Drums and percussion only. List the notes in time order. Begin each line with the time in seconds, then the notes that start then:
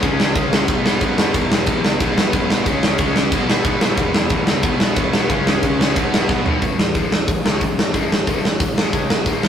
0.03 kick, crash
0.20 snare
0.35 kick, crash
0.53 snare
0.68 kick, crash
0.86 snare
1.01 kick, crash
1.18 snare
1.34 kick, crash
1.52 snare
1.66 kick, crash
1.85 snare
2.00 kick, crash
2.18 snare
2.33 kick, crash
2.50 snare
2.66 kick, crash
2.83 snare
2.98 kick, crash
3.16 snare
3.32 kick, crash
3.50 snare
3.64 kick, crash
3.81 snare
3.97 kick, crash
4.14 snare
4.29 kick, crash
4.47 snare
4.63 kick, crash
4.80 snare
4.96 kick, crash
5.13 snare
5.30 kick, crash
5.47 snare
5.63 kick, crash
5.81 snare
5.96 kick, crash
6.14 snare
6.29 kick, snare
6.46 floor tom
6.62 kick, open hi-hat
6.79 snare
6.95 kick, open hi-hat
7.12 snare
7.28 kick, open hi-hat
7.46 snare
7.61 kick, open hi-hat
7.79 snare
7.94 kick, open hi-hat
8.12 snare
8.27 kick, open hi-hat
8.45 snare
8.60 kick, open hi-hat
8.78 snare
8.93 kick, open hi-hat
9.10 snare
9.26 kick, open hi-hat
9.43 snare